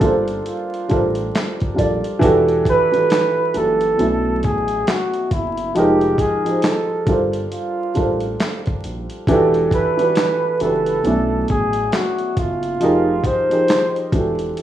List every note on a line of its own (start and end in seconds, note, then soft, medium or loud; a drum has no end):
0.00 0.41 G1 loud
0.00 0.74 G3 medium
0.00 0.75 D4 medium
0.00 0.75 F4 medium
0.00 0.22 A4 loud
0.00 0.76 A4 medium
0.00 0.76 A#4 medium
0.00 0.76 C5 medium
0.00 kick loud
0.00 closed hi-hat medium
0.28 closed hi-hat soft
0.46 1.30 F4 medium
0.46 closed hi-hat medium
0.74 closed hi-hat soft
0.89 1.31 A1 medium
0.89 1.51 G3 medium
0.89 1.51 D4 medium
0.89 1.52 F4 medium
0.89 1.52 A4 medium
0.89 1.53 A#4 medium
0.89 1.53 C5 medium
0.89 kick medium
0.89 closed hi-hat soft
1.15 closed hi-hat soft
1.35 snare loud
1.35 clap medium
1.35 closed hi-hat medium
1.60 kick medium
1.60 closed hi-hat soft
1.74 2.08 G3 medium
1.74 2.09 D4 medium
1.74 2.09 F4 medium
1.74 2.09 A4 medium
1.74 2.10 A#4 medium
1.78 2.02 A#1 medium
1.78 2.10 D5 medium
1.78 kick medium
1.78 closed hi-hat medium
2.04 closed hi-hat soft
2.19 2.62 E1 loud
2.19 2.65 E3 loud
2.19 2.65 D4 loud
2.19 2.66 F#4 loud
2.19 2.66 G4 loud
2.19 kick loud
2.19 closed hi-hat medium
2.24 2.67 A4 loud
2.49 closed hi-hat soft
2.65 3.59 B4 loud
2.65 kick medium
2.65 closed hi-hat medium
2.92 3.36 E3 medium
2.92 3.37 D4 medium
2.92 3.37 F#4 medium
2.92 3.38 G4 medium
2.92 3.38 A4 medium
2.92 closed hi-hat medium
3.10 snare loud
3.10 clap medium
3.10 closed hi-hat medium
3.54 3.95 F#1 loud
3.54 3.98 E3 medium
3.54 3.98 D4 medium
3.54 3.99 F#4 medium
3.54 4.00 G4 medium
3.54 4.46 A4 loud
3.54 closed hi-hat medium
3.58 4.00 A4 medium
3.81 closed hi-hat soft
3.97 4.47 B1 medium
3.97 5.40 B2 medium
3.97 5.41 F#3 medium
3.97 5.41 C#4 medium
3.97 5.41 D4 medium
3.97 5.42 E4 medium
3.97 closed hi-hat medium
4.01 5.42 A3 medium
4.43 4.84 A1 medium
4.43 4.90 G#4 medium
4.43 kick medium
4.43 closed hi-hat medium
4.68 closed hi-hat soft
4.87 5.34 F#4 medium
4.87 snare loud
4.87 clap medium
4.87 closed hi-hat medium
5.13 closed hi-hat soft
5.31 5.71 F#1 loud
5.31 5.77 E4 medium
5.31 kick medium
5.31 closed hi-hat medium
5.57 closed hi-hat soft
5.75 6.15 F1 loud
5.75 6.19 F3 loud
5.75 6.21 G#3 medium
5.75 6.20 D#4 medium
5.75 6.22 G4 loud
5.75 6.20 G4 medium
5.75 closed hi-hat medium
5.79 6.21 A#4 loud
6.01 closed hi-hat soft
6.18 6.66 G#4 medium
6.18 kick medium
6.18 closed hi-hat medium
6.44 6.89 F3 medium
6.44 6.89 D#4 medium
6.44 6.90 G4 medium
6.44 6.90 G#4 medium
6.44 6.91 C5 medium
6.44 closed hi-hat medium
6.62 7.28 A4 medium
6.62 snare loud
6.62 clap medium
6.62 closed hi-hat medium
7.07 7.47 G1 loud
7.07 7.81 G3 medium
7.07 7.81 D4 medium
7.07 7.82 F4 medium
7.07 7.82 A4 medium
7.07 7.82 A#4 medium
7.07 kick loud
7.07 closed hi-hat medium
7.11 7.83 C5 medium
7.33 closed hi-hat soft
7.52 8.36 F4 medium
7.52 closed hi-hat medium
7.94 8.37 A1 medium
7.94 8.84 G3 medium
7.94 8.84 D4 medium
7.94 8.84 F4 medium
7.94 8.85 A4 medium
7.94 8.85 A#4 medium
7.94 kick medium
7.94 closed hi-hat medium
7.98 8.86 C5 medium
8.20 closed hi-hat soft
8.40 snare loud
8.40 clap medium
8.40 closed hi-hat medium
8.66 kick medium
8.66 closed hi-hat soft
8.84 9.08 A#1 medium
8.84 closed hi-hat medium
9.10 closed hi-hat soft
9.27 9.68 E1 loud
9.27 9.72 E3 loud
9.27 9.73 D4 loud
9.27 9.73 F#4 loud
9.27 kick loud
9.27 closed hi-hat medium
9.31 9.74 G4 loud
9.31 9.74 A4 loud
9.54 closed hi-hat soft
9.71 10.63 B4 loud
9.71 kick medium
9.71 closed hi-hat medium
9.97 10.42 E3 medium
9.97 10.43 D4 medium
9.97 10.43 F#4 medium
9.97 10.43 G4 medium
9.97 closed hi-hat medium
10.01 10.44 B4 medium
10.15 snare loud
10.15 clap medium
10.15 closed hi-hat medium
10.60 11.01 F#1 loud
10.60 11.04 E3 medium
10.60 11.04 D4 medium
10.60 11.05 F#4 medium
10.60 11.06 G4 medium
10.60 11.49 A4 loud
10.60 closed hi-hat medium
10.65 11.06 B4 medium
10.86 closed hi-hat soft
11.03 11.44 B1 loud
11.03 12.46 B2 medium
11.03 12.47 F#3 medium
11.03 12.47 C#4 medium
11.03 12.48 D4 medium
11.03 12.48 E4 medium
11.03 closed hi-hat medium
11.08 12.49 A3 medium
11.48 11.89 A1 medium
11.48 11.96 G#4 medium
11.48 kick medium
11.48 closed hi-hat medium
11.73 closed hi-hat soft
11.92 12.40 F#4 medium
11.92 snare loud
11.92 clap loud
11.92 closed hi-hat medium
12.18 closed hi-hat soft
12.37 12.77 F#1 medium
12.37 13.28 F4 loud
12.37 kick medium
12.37 closed hi-hat medium
12.63 closed hi-hat soft
12.80 13.21 F1 loud
12.80 13.25 F3 medium
12.80 13.25 D#4 medium
12.80 13.26 G4 medium
12.80 13.26 G#4 medium
12.80 13.27 A#4 loud
12.80 closed hi-hat medium
13.24 14.14 C5 loud
13.24 kick medium
13.24 closed hi-hat medium
13.50 13.95 F3 medium
13.50 13.95 D#4 medium
13.50 13.96 G4 medium
13.50 13.96 G#4 medium
13.50 13.96 A#4 medium
13.50 closed hi-hat medium
13.68 snare loud
13.68 clap medium
13.68 closed hi-hat medium
13.96 closed hi-hat soft
14.12 14.53 E1 loud
14.12 14.62 E3 medium
14.12 14.62 D4 medium
14.12 14.62 F#4 medium
14.12 14.62 G4 medium
14.12 kick loud
14.12 closed hi-hat medium
14.17 14.62 A4 medium
14.39 closed hi-hat soft
14.57 closed hi-hat medium